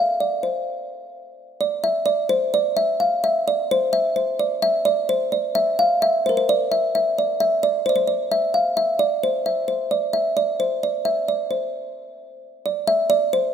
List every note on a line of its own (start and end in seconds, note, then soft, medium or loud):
0.00 0.18 F5 medium
0.20 0.31 D5 medium
0.43 1.32 C5 medium
1.61 1.82 D5 medium
1.84 2.07 E5 medium
2.06 2.30 D5 medium
2.29 2.40 C5 loud
2.54 2.77 D5 medium
2.77 2.98 E5 medium
3.00 3.24 F5 medium
3.24 3.47 E5 medium
3.48 3.70 D5 medium
3.71 3.94 C5 loud
3.93 4.16 E5 medium
4.16 4.39 C5 medium
4.39 4.60 D5 medium
4.62 4.86 E5 loud
4.85 5.06 D5 loud
5.09 5.30 C5 medium
5.32 5.53 D5 medium
5.55 5.78 E5 loud
5.79 6.02 F5 medium
6.02 6.23 E5 loud
6.26 6.35 A#4 medium
6.26 6.30 C5 medium
6.37 6.47 C5 medium
6.49 6.69 D5 loud
6.72 6.92 E5 medium
6.95 7.17 E5 medium
7.18 7.40 D5 medium
7.40 7.61 E5 loud
7.63 7.84 D5 medium
7.86 7.91 C5 medium
7.86 7.95 D5 medium
7.96 8.07 C5 medium
8.07 8.31 D5 medium
8.32 8.52 E5 medium
8.54 8.77 F5 medium
8.77 8.98 E5 medium
8.99 9.20 D5 medium
9.23 9.44 C5 medium
9.46 9.67 E5 medium
9.68 9.91 C5 medium
9.91 10.14 D5 medium
10.13 10.35 E5 medium
10.37 10.58 D5 medium
10.60 10.81 C5 medium
10.83 11.06 D5 medium
11.05 11.26 E5 medium
11.28 11.52 D5 medium
11.51 12.38 C5 medium
12.66 12.76 D5 medium
12.88 13.11 E5 loud
13.10 13.31 D5 loud
13.33 13.54 C5 medium